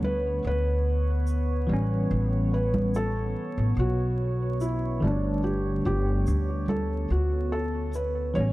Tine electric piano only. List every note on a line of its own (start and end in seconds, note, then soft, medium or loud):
0.00 0.40 D3 medium
0.00 0.41 G3 medium
0.00 0.43 A3 medium
0.00 0.44 D4 medium
1.67 3.74 E3 medium
1.67 3.75 G3 medium
1.71 3.76 B3 medium
1.71 3.77 C#4 medium
5.00 7.07 D3 medium
5.00 7.08 G3 medium
5.05 7.10 A3 medium
5.05 7.11 D4 loud
8.34 8.53 E3 medium
8.34 8.53 G3 medium
8.38 8.53 B3 medium
8.38 8.53 C#4 medium